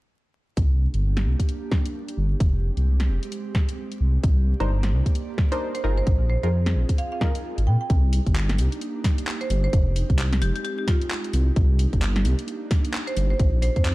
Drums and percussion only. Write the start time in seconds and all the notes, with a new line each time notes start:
0.57 kick, closed hi-hat
0.94 closed hi-hat
1.17 snare, closed hi-hat
1.40 kick, closed hi-hat
1.49 closed hi-hat
1.72 kick, snare
1.85 closed hi-hat
2.08 closed hi-hat
2.40 kick, closed hi-hat
2.77 closed hi-hat
3.00 snare, closed hi-hat
3.23 closed hi-hat
3.32 closed hi-hat
3.55 kick, snare
3.69 closed hi-hat
3.92 closed hi-hat
4.23 kick, closed hi-hat
4.60 closed hi-hat
4.83 snare, closed hi-hat
5.06 kick, closed hi-hat
5.15 closed hi-hat
5.38 kick, snare
5.52 closed hi-hat
5.75 closed hi-hat
6.07 kick, closed hi-hat
6.43 closed hi-hat
6.66 snare, closed hi-hat
6.89 kick, closed hi-hat
6.98 closed hi-hat
7.21 kick, snare
7.35 closed hi-hat
7.58 closed hi-hat
7.90 kick, closed hi-hat
8.13 open hi-hat
8.27 kick, closed hi-hat
8.36 clap
8.49 snare, closed hi-hat
8.59 open hi-hat
8.72 closed hi-hat
8.81 closed hi-hat
9.04 kick, snare, open hi-hat
9.18 closed hi-hat
9.27 clap
9.41 closed hi-hat
9.50 open hi-hat
9.73 kick, closed hi-hat
9.96 open hi-hat
10.10 kick, closed hi-hat
10.19 clap
10.33 snare, closed hi-hat
10.42 open hi-hat
10.56 closed hi-hat
10.65 closed hi-hat
10.88 kick, snare, open hi-hat
11.01 closed hi-hat
11.11 clap
11.24 closed hi-hat
11.33 open hi-hat
11.56 kick, closed hi-hat
11.79 open hi-hat
11.93 kick, closed hi-hat
12.02 clap
12.16 snare, closed hi-hat
12.25 open hi-hat
12.39 closed hi-hat
12.48 closed hi-hat
12.71 kick, snare, open hi-hat
12.85 closed hi-hat
12.94 clap
13.07 closed hi-hat
13.17 open hi-hat
13.39 kick, closed hi-hat
13.62 open hi-hat
13.76 kick, closed hi-hat
13.85 clap